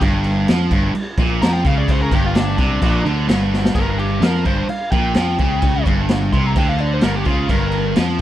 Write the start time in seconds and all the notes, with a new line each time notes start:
0.01 G1 G2, kick, crash
0.24 crash
0.48 F2 F3, snare, crash
0.71 G1 G2, kick, crash
0.95 muted distorted electric guitar stroke, muted fingered electric bass stroke, crash
1.18 A#1 A#2, kick, crash
1.42 F2 F3 A#5, snare, crash
1.53 G5
1.65 C#2 C#3 F5, kick, crash
1.78 D5
1.88 C5, kick, crash
2.02 A#4
2.11 G1 G2 G4, kick, crash
2.26 F4
2.35 D4, snare, crash
2.58 C2 C3 D4, kick, crash
2.82 A#1 A#2, kick, crash
3.05 D2 D3, crash
3.28 G1 G2, snare, crash
3.53 snare
3.65 snare
3.75 G1 G2 A#4, kick, crash
3.99 G4, crash
4.20 F2 F3 A#4, snare, crash
4.44 G1 G2 C5, kick, crash
4.67 F5, muted fingered electric bass stroke, muted distorted electric guitar stroke, crash
4.92 A#1 A#2 G5, kick, crash
5.14 F2 F3, snare, crash
5.39 C#2 C#3, kick, crash
5.62 kick, crash
5.86 G1 G2, kick, crash
6.09 snare, crash
6.32 C2 C3 C6, kick, crash
6.47 A#5
6.56 D2 D3 G5, kick, crash
6.69 F5
6.78 D5, crash
6.93 C5
7.01 G1 G2 A#4, snare, crash
7.15 G4
7.25 C#2 C#3 F4, kick, crash
7.49 G1 G2 A#4, kick, crash
7.72 crash
7.96 F2 F3, snare, crash